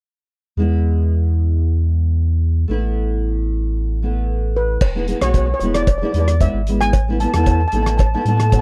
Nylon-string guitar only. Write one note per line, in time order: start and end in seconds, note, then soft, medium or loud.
0.57 2.65 G#3 medium
0.57 2.66 B3 medium
0.57 2.67 E4 medium
2.68 3.98 A3 medium
2.68 3.99 B3 medium
2.68 4.00 E4 medium
4.03 4.82 A3 soft
4.03 4.82 B3 soft
4.03 4.82 E4 medium
4.95 5.03 G#3 medium
4.95 5.03 B3 medium
4.95 5.04 E4 medium
5.08 5.16 G#3 medium
5.08 5.17 B3 medium
5.08 5.17 E4 medium
5.22 5.46 G#3 medium
5.22 5.46 B3 medium
5.22 5.47 F#4 medium
5.62 5.85 G#3 medium
5.62 5.86 B3 medium
5.62 5.86 E4 medium
6.02 6.09 G#3 medium
6.02 6.09 B3 medium
6.02 6.10 E4 medium
6.14 6.31 G#3 medium
6.14 6.31 B3 medium
6.14 6.31 E4 medium
6.41 6.57 G#3 medium
6.41 6.58 B3 medium
6.41 6.58 E4 medium
6.68 6.92 G#3 medium
6.68 6.92 B3 medium
6.68 6.92 E4 medium
7.08 7.15 A3 medium
7.08 7.16 B3 medium
7.08 7.16 E4 medium
7.20 7.28 A3 medium
7.20 7.29 B3 medium
7.20 7.29 E4 medium
7.35 7.58 A3 medium
7.35 7.58 B3 medium
7.35 7.59 E4 medium
7.72 7.97 A3 medium
7.72 7.97 B3 medium
7.72 7.98 E4 medium
8.14 8.21 A3 medium
8.14 8.22 B3 medium
8.14 8.22 E4 medium
8.26 8.43 A3 medium
8.26 8.43 B3 medium
8.26 8.43 E4 medium
8.51 8.62 A3 medium
8.51 8.62 B3 medium
8.51 8.62 F#4 medium